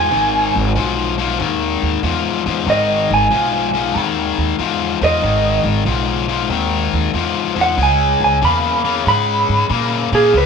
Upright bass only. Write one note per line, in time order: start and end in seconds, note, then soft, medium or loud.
0.00 0.11 E2 medium
0.12 0.53 G#1 medium
0.55 0.75 G#1 medium
0.75 1.37 B1 medium
1.40 1.81 D#2 medium
1.82 2.02 D#2 medium
2.03 2.44 E2 medium
2.46 2.66 E2 medium
2.67 3.08 G#1 medium
3.10 3.30 G#1 medium
3.30 3.92 B1 medium
3.95 4.36 D#2 medium
4.38 4.58 D#2 medium
4.59 5.00 E2 medium
5.01 5.21 E2 medium
5.22 5.63 G#1 medium
5.64 5.85 G#1 medium
5.85 6.47 B1 medium
6.50 6.91 D#2 medium
6.93 7.13 D#2 medium
7.13 7.55 E2 medium
7.56 7.76 E2 medium
7.77 8.19 C#2 medium
8.20 8.41 C#2 medium
8.42 9.03 E2 medium
9.06 9.47 G#2 medium
9.49 9.69 G#2 medium
9.70 10.11 A#2 medium
10.12 10.32 A#2 medium
10.33 10.46 C#2 medium